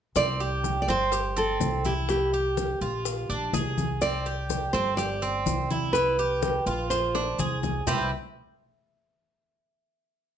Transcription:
0.16 C2 C4 D5, high bongo, high conga, maracas
0.40 G4, high bongo, high conga, maracas
0.64 high bongo, high conga, maracas
0.82 D5
0.88 G1 C4 C5, high bongo, high conga, maracas
1.12 G4, high bongo, high conga, maracas
1.36 C4 A4, high conga, maracas
1.60 C2, high bongo, low bongo, high conga, maracas
1.85 E4 G4, high conga, maracas
2.09 G4, high bongo, high conga, maracas
2.33 G4, high bongo, high conga, maracas
2.57 high bongo, high conga, maracas
2.81 A#1 F4, high bongo, high conga, maracas
3.05 high bongo, high conga, maracas
3.29 A#1 D4, high conga, maracas
3.53 C2 G#4, high bongo, low bongo, high conga, maracas
3.78 high conga, maracas
4.02 C4 D5, high bongo, maracas
4.26 G4, high bongo, high conga, maracas
4.50 high bongo, high conga, maracas
4.73 G1 C4 C5, high bongo, high conga, maracas
4.97 G4 D5, high bongo, high conga, maracas
5.22 C4, high conga, maracas
5.46 C2, high bongo, low bongo, high conga, maracas
5.70 E4, high conga, maracas
5.93 B4, high bongo, high conga, maracas
6.18 G4, high bongo, high conga, maracas
6.42 high bongo, high conga, maracas
6.66 A#1 F4, high bongo, high conga, maracas
6.90 C5, high bongo, high conga, maracas
7.15 D4, high bongo, high conga, maracas
7.39 C2 G#4, high conga, maracas
7.63 low bongo, high conga, maracas
7.87 C2 C4 G4 B4 E5, low bongo, low conga, maracas

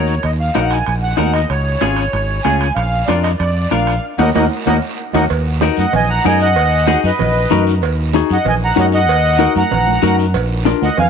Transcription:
Already playing: D#2 D#4 F#4 A#4 C#5
0.07 short guiro
0.23 D#2 D#5, high conga, high timbale, long guiro
0.40 F5
0.55 A#1 D#4 F#4 A#4 F#5, high conga, high timbale, short guiro
0.61 F5 F#5
0.70 G#5, high timbale, short guiro
0.86 A#1 G#5, high conga, high timbale, long guiro
1.03 F#5
1.17 D#2 D#4 F#4 A#4, high conga, high timbale, low timbale, short guiro
1.33 D#5, high timbale, short guiro
1.50 C#2 C#5, high conga, high timbale, long guiro
1.81 G#1 C#4 F4 G#4, high conga, high timbale, short guiro
1.96 high timbale, short guiro
2.13 G#1, high conga, high timbale, long guiro
2.43 C#2 C#4 F4 G#4 G#5, high conga, high timbale, low timbale, short guiro
2.61 high timbale, short guiro
2.75 A#1 F5, high conga, high timbale, long guiro
3.06 F2 D4 F4 A#4 D5, high conga, high timbale, short guiro
3.22 D#5, high timbale, short guiro
3.38 F2 D5, high conga, high timbale, long guiro
3.71 A#1 D4 F4 A#4 F5, high conga, high timbale, short guiro
3.87 high timbale, short guiro
4.18 D#2 A#3 D#4 F#4 A#4 D#5 F#5, high conga, high timbale, long guiro
4.35 D#2 A#3 D#4 F#4 A#4 D#5 F#5, high conga, high timbale, long guiro
4.66 D#2 A#3 D#4 F#4 A#4 D#5 F#5, high conga, high timbale
5.13 D#2 A#3 D#4 F#4 A#4 D#5 F#5, high conga, high timbale, long guiro
5.30 D#2, cowbell, long guiro
5.61 D#4 F#4 A#4, high conga, short guiro
5.77 F#2 D#5 F#5, high conga, short guiro
5.93 A#1 D#5 G#5, cowbell, high conga, low conga, long guiro
6.09 F#5 A#5
6.24 F#2 D#4 F#4 A#4 D#5 G#5, high conga, low timbale, short guiro
6.40 D#5 F#5, short guiro
6.56 D#2, cowbell, high conga, long guiro
6.87 D#4 F#4 G#4, high conga, short guiro
7.04 F#2 B4 D#5, short guiro
7.19 A#1, cowbell, high conga, low conga, long guiro
7.50 F#2 D#4 F#4 A#4 A#5, high conga, low conga, short guiro
7.67 short guiro
7.82 D#2, cowbell, high conga, long guiro
8.13 D#4 F#4 G#4, high conga, short guiro
8.29 F#2 D#5 F#5, short guiro
8.45 A#1 D#5 G#5, cowbell, high conga, low conga, long guiro
8.64 F#5 A#5
8.76 F#2 D#4 F#4 A#4 D#5 F#5, high conga, low timbale, short guiro
8.92 D#5 F#5, short guiro
9.08 D#2, cowbell, high conga, long guiro
9.39 D#4 F#4 A#4, high conga, short guiro
9.55 F#2 F#5 A#5, high conga, short guiro
9.71 A#1, cowbell, high conga, low conga, long guiro
9.87 high conga
10.03 F#2 D#4 F#4 A#4 A#5, high conga, short guiro
10.19 short guiro
10.34 A#1, cowbell, high conga, long guiro
10.65 D4 F4 A#4, high conga, short guiro
10.82 D2 D#5 F#5, high conga, short guiro
10.97 F2 F5 G#5, cowbell, high conga, low conga, long guiro

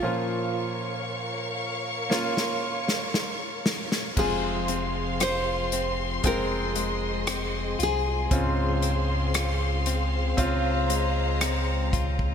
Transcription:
Already playing: F4
0.02 A#2 F3 A#3 C#4 F4 A#4 C#5 F5 C#6
2.10 A#3 C#4 F4, snare
2.37 snare
2.88 snare
3.14 snare
3.66 snare
3.92 snare
4.16 F1 F2 C3 G#3 C4 F4 G#4 C5 F5 C6, kick, crash
4.68 C4, closed hi-hat
5.20 F4 C5, cross-stick, closed hi-hat
5.72 C4, closed hi-hat
6.24 F1 G#3 C4 F4 A#4 D#5 G5, kick, closed hi-hat
6.76 G#3, closed hi-hat
7.27 C4, cross-stick, closed hi-hat
7.79 C2 F4 G#4, closed hi-hat
8.31 C#2 G#2 C#3 C4 C#4 F4 C5 F5 C6, kick, closed hi-hat
8.82 C4, closed hi-hat
9.34 F4, cross-stick, closed hi-hat
9.86 C4, closed hi-hat
10.36 C#2 C4 C#4 F4 A#5, kick, closed hi-hat
10.90 G#3, closed hi-hat
11.41 C4, cross-stick, closed hi-hat
11.93 F4, kick, closed hi-hat
12.19 kick

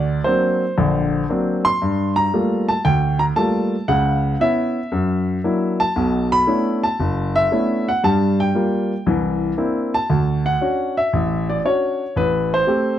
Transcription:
Already playing: D2 D5
0.24 F#3 A#3 C4 D4 C5
0.78 A#1 D3
1.29 F#3 A#3 C4 D4
1.65 C6
1.82 G2
2.16 A#5
2.33 G3 A3 A#3 F4
2.68 A5
2.85 D2 G5
3.19 A#5
3.36 G3 A3 A#3 F4 A5
3.88 C#2 C#3 F#5
4.40 B3 C#4 E4 E5
4.92 F#2
5.44 F#3 A#3 D4 E4
5.80 A5
5.96 B1 B2
6.32 B5
6.47 A3 B3 C#4 D4 E4
6.83 A5
7.00 F#1
7.36 E5
7.51 A3 B3 C#4 D4 E4
7.88 F#5
8.04 G2 G3 A5
8.40 G5
8.54 G3 A#3 F4
9.06 C2 E3
9.57 A#3 C4 D4 E4
9.94 A5
10.10 D2
10.46 F#5
10.61 C#4 D4 F#4
10.97 E5
11.13 A1
11.49 D5
11.65 C#4 D4 F#4 C#5
12.16 A1 B4
12.54 C5
12.67 A3 C4 G4

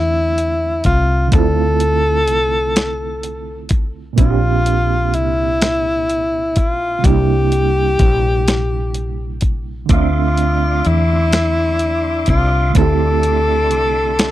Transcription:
Already playing: E2 D3 A3 C4 D4 E4 E5
0.38 closed hi-hat
0.84 C2 F4, kick, closed hi-hat
1.28 D3 A3, closed hi-hat
1.32 D2 C4 A4, kick
1.36 E4 F4
1.80 closed hi-hat
2.28 C2, closed hi-hat
2.76 snare, closed hi-hat
3.23 closed hi-hat
3.69 kick, closed hi-hat
4.13 A#2 A#3
4.18 A#1 C4 D4 F4, kick, closed hi-hat
4.24 F#4
4.31 G4
4.66 closed hi-hat
5.14 C2 E4, closed hi-hat
5.62 snare, closed hi-hat
6.10 closed hi-hat
6.56 A#1 F4, kick, closed hi-hat
6.99 C3 G3
7.04 C2 A#3 D4 G4, kick, closed hi-hat
7.10 E4
7.52 closed hi-hat
7.99 A#1, kick, closed hi-hat
8.48 snare, closed hi-hat
8.94 closed hi-hat
9.41 kick, closed hi-hat
9.86 D3 A3 D4 D6, kick, closed hi-hat
9.90 D2 C4 F4 E5 C6
9.94 D4 E5
10.38 closed hi-hat
10.85 E2 E4, closed hi-hat
11.33 snare, closed hi-hat
11.79 closed hi-hat
12.26 C2 F4, kick, closed hi-hat
12.70 D3 A3
12.75 D2 C4 E4 A4, kick, closed hi-hat
12.81 G4
13.23 closed hi-hat
13.71 C2, closed hi-hat
14.19 snare, closed hi-hat

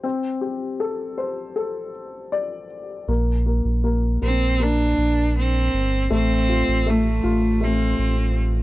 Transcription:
0.03 C4
0.41 G4
0.80 A4
1.18 C5
1.56 A4
2.32 D5
3.08 A#1 A#3
3.46 A#3
3.65 A#1
3.84 A#3
4.22 A#1 A#3 C4
4.60 A#3 D4
4.98 A#1
5.39 C4
5.73 G1
6.10 A1 A3 C4
6.49 F4
6.68 A1
6.86 A3
7.24 A1 F4
7.61 A3 C4
7.98 A1

